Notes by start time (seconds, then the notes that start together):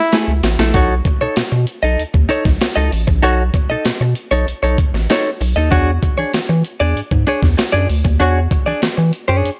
Already playing: E4
0.12 A3 E4 G#4, snare, closed hi-hat
0.28 C#2
0.43 A1, muted clean electric guitar stroke, snare, closed hi-hat
0.59 A#1 A3 E4 A4, snare
0.74 B1 D#4 F#4 A4 C#5, kick, closed hi-hat
1.05 muted clean electric guitar stroke, kick, closed hi-hat
1.21 B2 D#4 A4 C#5
1.36 B2, muted clean electric guitar stroke, snare, closed hi-hat
1.52 B2, muted clean electric guitar stroke
1.67 closed hi-hat
1.83 B1 D#4 A4 D#5
1.99 D#2, closed hi-hat
2.14 D#2, muted clean electric guitar stroke, kick
2.29 D#4 A4 C#5, closed hi-hat
2.45 B1, muted clean electric guitar stroke, kick, snare
2.61 muted clean electric guitar stroke, snare, closed hi-hat
2.76 C#2 D#4 A4 D#5
2.92 A1, muted clean electric guitar stroke, open hi-hat
3.07 A#1, muted clean electric guitar stroke, kick
3.23 B1 D#4 F#4 A4 C#5, closed hi-hat
3.54 muted clean electric guitar stroke, kick, closed hi-hat
3.70 B2 D#4 A4 D#5
3.85 B2, muted clean electric guitar stroke, snare, closed hi-hat
4.01 B2, muted clean electric guitar stroke
4.15 closed hi-hat
4.31 B1 D#4 A4 C#5
4.47 B1, muted clean electric guitar stroke, closed hi-hat
4.63 B1 D#4 A4 C#5
4.78 muted clean electric guitar stroke, kick, closed hi-hat
4.94 A1, muted clean electric guitar stroke, snare
5.10 D#4 A4 C#5, snare, closed hi-hat
5.41 B1, muted clean electric guitar stroke, open hi-hat
5.56 D#2 D#4 A4 D#5
5.71 E2 D4 F#4 G#4 C#5, kick, closed hi-hat
6.02 muted clean electric guitar stroke, kick, closed hi-hat
6.18 E3 D4 G#4 C#5
6.33 E3, muted clean electric guitar stroke, snare, closed hi-hat
6.49 E3, muted clean electric guitar stroke
6.64 closed hi-hat
6.80 E2 D4 G#4 D5
6.96 G#2, closed hi-hat
7.11 G#2, muted clean electric guitar stroke, kick
7.27 D4 G#4 C#5, closed hi-hat
7.42 E2, muted clean electric guitar stroke, kick, snare
7.57 muted clean electric guitar stroke, snare, closed hi-hat
7.72 F#2 D4 G#4 D5
7.89 D2, muted clean electric guitar stroke, open hi-hat
8.04 D#2, muted clean electric guitar stroke, kick
8.20 E2 D4 F#4 G#4 C#5, closed hi-hat
8.51 muted clean electric guitar stroke, kick, closed hi-hat
8.66 E3 D4 G#4 D5
8.82 E3, muted clean electric guitar stroke, snare, closed hi-hat
8.97 E3, muted clean electric guitar stroke
9.13 closed hi-hat
9.28 F#2 D4 G#4 C#5
9.44 F#2, closed hi-hat